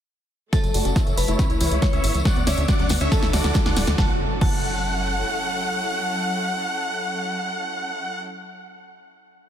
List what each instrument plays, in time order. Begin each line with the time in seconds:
0.53 synth pluck E3, string section F#3 A3 E4 A4, synth bell A4 A5, supersaw synth C#5 E5, kick, snare, closed hi-hat, tambourine, riser
0.64 analog synth bass F#1, synth pluck F#3, closed hi-hat, tambourine
0.74 analog synth bass F#1, synth pluck A3, supersaw synth F#4 D5, open hi-hat, tambourine
0.85 analog synth bass F#1, synth pluck C#4, closed hi-hat, tambourine
0.96 synth pluck E4, supersaw synth C#5 E5, kick, snare, closed hi-hat, tambourine
1.07 analog synth bass F#1, synth pluck E3, closed hi-hat, tambourine
1.17 analog synth bass F#1, synth pluck F#3, synth bell B4 B5, open hi-hat, tambourine
1.27 analog synth bass F#1, synth pluck A3, supersaw synth E4 C#5, closed hi-hat, tambourine
1.39 string section C#3 B4, synth pluck C#4, kick, snare, closed hi-hat, tambourine
1.50 analog synth bass C#2, synth pluck E4, closed hi-hat, tambourine
1.60 analog synth bass C#2, synth pluck E3, supersaw synth E4 C#5, open hi-hat, tambourine
1.71 analog synth bass C#2, synth pluck G#3, closed hi-hat, tambourine
1.82 synth pluck B3, synth bell C#5 C#6, kick, snare, closed hi-hat, tambourine
1.93 analog synth bass C#2, synth pluck C#4, supersaw synth C#5 E5, closed hi-hat, tambourine
2.04 analog synth bass G#1, synth pluck E4, open hi-hat, tambourine
2.15 analog synth bass C#2, synth pluck E3, closed hi-hat, tambourine
2.25 string section D3 B3, synth pluck F#3, supersaw synth D5 F#5, kick, snare, closed hi-hat, tambourine
2.36 analog synth bass D2, synth pluck B3, closed hi-hat, tambourine
2.47 analog synth bass D2, synth pluck C#4, supersaw synth C#5 E5, synth bell D5 D6, snare, open hi-hat, tambourine
2.57 analog synth bass D2, synth pluck D4, closed hi-hat, tambourine
2.68 synth pluck F#4, supersaw synth D5 F#5, kick, snare, closed hi-hat, tambourine
2.79 analog synth bass D2, synth pluck F#3, closed hi-hat, tambourine
2.89 analog synth bass D2, synth pluck B3, snare, open hi-hat, tambourine
3.01 analog synth bass D2, synth pluck C#4, supersaw synth C#5 E5, closed hi-hat, tambourine
3.12 synth pluck D4, string section D4 E4 F#4 A4, synth bell A4 A5, kick, snare, closed hi-hat, tambourine
3.23 analog synth bass D2, synth pluck E4, snare, closed hi-hat, tambourine
3.33 analog synth bass D2, synth pluck E3, supersaw synth F#4 D5, snare, open hi-hat, tambourine
3.44 analog synth bass D2, synth pluck F#3, snare, closed hi-hat, tambourine
3.54 synth pluck A3, kick, snare, closed hi-hat, tambourine
3.66 analog synth bass D2, synth pluck D4, supersaw synth D5 F#5, snare, closed hi-hat, tambourine
3.76 analog synth bass D1, synth pluck E4, snare, open hi-hat, tambourine
3.87 analog synth bass D2, synth pluck E3, snare, closed hi-hat, tambourine
3.98 analog synth bass F#1, synth pluck E3, string section F#3 C#4 E4 A4, supersaw synth F#5, synth bell A5, kick, snare, impact
4.41 analog synth bass F#1, synth pluck E3, supersaw synth F#5, synth bell A5, kick, crash